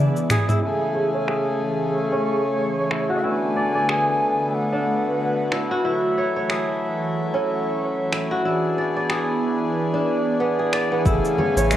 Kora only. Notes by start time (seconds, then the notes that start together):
Already playing: D4 E4
0.30 G#4
0.49 E4
0.62 E4
0.95 C#5
1.14 C#5
1.29 G#4
2.12 C#4
2.91 E4
3.10 F#4
3.24 E4
3.56 D5
3.75 D5
3.88 G#4
4.73 D4
5.52 E4
5.71 F#4
5.85 E4
6.18 C#5
6.36 C#5
6.50 G#4
7.34 C#4
8.12 E4
8.31 F#4
8.45 E4
8.78 D5
8.97 D5
9.10 G#4
9.94 D4
10.40 B3
10.59 G#4
10.73 D5
10.92 B3
11.06 E4
11.38 C#5
11.57 C#5
11.72 G#3